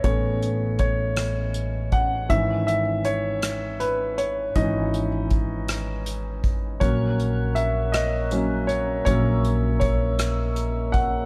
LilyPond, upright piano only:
<<
  \new Staff \with { instrumentName = "Upright piano" } { \time 6/8 \key fis \dorian \tempo 4. = 53 cis''4 cis''4. fis''8 | e''8 e''8 cis''4 b'8 cis''8 | dis''2~ dis''8 r8 | cis''4 e''8 dis''4 cis''8 |
cis''4 cis''4. fis''8 | }
  \new Staff \with { instrumentName = "Upright piano" } { \time 6/8 \key fis \dorian <a b cis'>2. | <dis e cis'>8 r2 r8 | <e cis' dis'>8 r2 r8 | <fis ais cis'>4. r8 <fis ais cis'>8 r8 |
<fis ais cis'>4. r4. | }
>>